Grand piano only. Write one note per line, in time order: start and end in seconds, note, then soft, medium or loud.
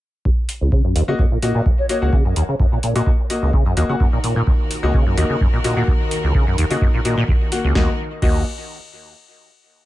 1.08 1.19 A#3 medium
1.08 1.19 F#4 medium
1.08 1.19 D#5 loud
1.43 1.61 A#3 medium
1.43 1.61 F#4 medium
1.43 1.61 D#5 medium
1.89 2.00 A#3 medium
1.89 2.00 F#4 medium
1.89 2.00 D#5 medium
2.02 2.13 A#3 medium
2.02 2.13 F#4 medium
2.02 2.13 F#5 medium
2.96 3.06 A#3 medium
2.96 3.06 F#4 medium
2.96 3.06 D#5 loud
3.30 3.49 A#3 medium
3.30 3.49 F#4 medium
3.30 3.49 D#5 medium
3.77 3.87 A#3 medium
3.77 3.87 F#4 medium
3.77 3.87 D#5 medium
3.89 4.00 A#3 medium
3.89 4.00 F#4 medium
3.89 4.00 F#5 medium
4.83 4.94 A#3 medium
4.83 4.94 F#4 medium
4.83 4.94 D#5 loud
5.17 5.36 A#3 medium
5.17 5.36 F#4 medium
5.17 5.36 D#5 medium
5.64 5.75 A#3 medium
5.64 5.75 F#4 medium
5.64 5.75 D#5 medium
5.77 5.88 A#3 medium
5.77 5.88 F#4 medium
5.77 5.88 F#5 medium
6.71 6.81 A#3 medium
6.71 6.81 F#4 medium
6.71 6.81 D#5 loud
7.05 7.17 A#3 medium
7.05 7.17 F#4 medium
7.05 7.17 D#5 medium
7.52 7.71 A#3 medium
7.52 7.71 F#4 medium
7.52 7.71 F#5 medium
7.75 7.89 A#3 medium
7.75 7.89 F#4 medium
7.75 7.89 D#5 medium
8.22 8.40 A#3 medium
8.22 8.40 F#4 medium
8.22 8.40 D#5 medium